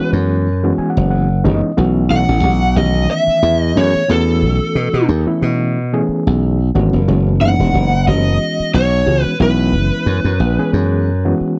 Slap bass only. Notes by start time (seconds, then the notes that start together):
0.13 F#2
0.78 muted slap bass stroke
0.97 F#1
1.45 F#1
1.78 B1
2.11 B1
2.29 A1
2.43 B1
2.76 B1
3.27 muted slap bass stroke
3.43 E2
3.77 F#2
3.95 muted slap bass stroke
4.09 E2
4.42 B1
4.75 B2
4.94 B2
5.09 D#2
5.42 B2
6.09 muted slap bass stroke
6.27 B1
6.75 G#1
6.93 F#1
7.08 F#1
7.41 F#1
7.59 E1
7.74 F#1
8.07 F#1
8.60 muted slap bass stroke
8.74 B1
9.06 C#2
9.25 muted slap bass stroke
9.40 B1
9.73 F#1
10.06 F#2
10.25 F#2
10.40 A#1
10.73 F#2
11.41 muted slap bass stroke